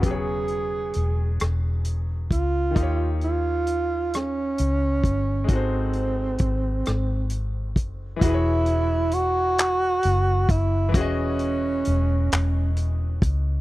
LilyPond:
<<
  \new Staff \with { instrumentName = "Grand piano" } { \time 6/8 \key e \major \tempo 4. = 44 <cis fis b gis' cis''>2. | <dis dis' eis' g' cis''>2. | <gis dis' fis' a' bis'>2. | <e e' fis' gis' b' cis''>2. |
<e e' fis' gis' dis''>2. | }
  \new Staff \with { instrumentName = "Tenor saxophone" } { \time 6/8 \key e \major gis'4. r4 f'8~ | f'8 eis'4 cis'4. | bis2 r4 | e'4 fis'4. e'8 |
cis'2 r4 | }
  \new Staff \with { instrumentName = "Fingered electric bass" } { \clef bass \time 6/8 \key e \major e,,4 e,,8 e,,4 cis,8 | dis,2 cis,8 g,,8 | gis,,4 gis,,8 gis,,4 fis,,8 | e,,2 fis,,8 fis,,8 |
e,,4 e,,8 e,,4 cis,8 | }
  \new DrumStaff \with { instrumentName = "Drums" } \drummode { \time 6/8 <hh bd>8 hh8 hh8 <hh ss>8 hh8 <hh bd>8 | <hh bd>8 hh8 hh8 <hh ss>8 hh8 <hh bd>8 | <hh bd>8 hh8 <hh bd>8 <hh ss>8 hh8 <hh bd>8 | <hh bd>8 hh8 hh8 <hc hh>8 hh8 <hh bd>8 |
<hh bd>8 hh8 hh8 <hc hh>8 hh8 <hh bd>8 | }
>>